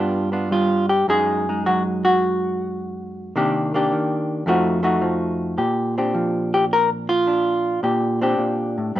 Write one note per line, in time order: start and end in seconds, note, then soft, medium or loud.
0.00 1.06 G2 medium
0.00 0.50 G3 soft
0.00 0.31 B3 soft
0.00 0.32 D4 soft
0.00 0.32 F4 soft
0.32 1.06 B3 soft
0.32 1.07 D4 soft
0.32 0.51 F4 soft
0.51 1.06 G3 soft
0.51 0.89 F4 medium
0.89 1.08 G4 medium
1.08 3.32 F#2 medium
1.08 1.65 F#3 soft
1.08 1.47 G#3 soft
1.08 1.49 D#4 soft
1.08 1.66 G#4 medium
1.49 3.36 G#3 soft
1.49 3.34 D#4 soft
1.66 3.33 F#3 medium
1.66 1.82 F#4 medium
2.05 3.35 F#4 medium
3.36 3.91 C3 medium
3.36 3.90 D#3 medium
3.36 3.73 A#3 medium
3.36 3.73 D4 medium
3.36 3.73 G4 medium
3.74 4.45 A#3 medium
3.74 4.45 D4 medium
3.74 4.45 G4 medium
3.92 4.47 D#3 medium
4.46 5.58 F2 medium
4.46 5.01 F3 medium
4.46 4.82 A3 medium
4.46 4.83 D#4 medium
4.46 4.83 F#4 medium
4.83 5.55 A3 medium
4.83 5.56 D#4 medium
4.83 5.56 F#4 medium
5.02 5.61 F3 medium
5.58 7.82 A#2 medium
5.58 5.98 G4 medium
5.98 7.82 C4 soft
5.98 7.27 D4 soft
5.98 6.54 G4 soft
6.14 7.87 F3 medium
6.54 6.64 G4 medium
6.73 6.89 A#4 loud
7.09 7.83 F4 medium
7.27 8.22 D4 soft
7.83 8.37 A#2 medium
7.83 8.21 G4 medium
8.21 8.94 C4 medium
8.21 8.94 D4 medium
8.21 8.95 G4 medium
8.38 8.76 A#2 medium
8.78 8.95 A2 medium
8.96 9.00 G2 medium
8.96 9.00 G3 medium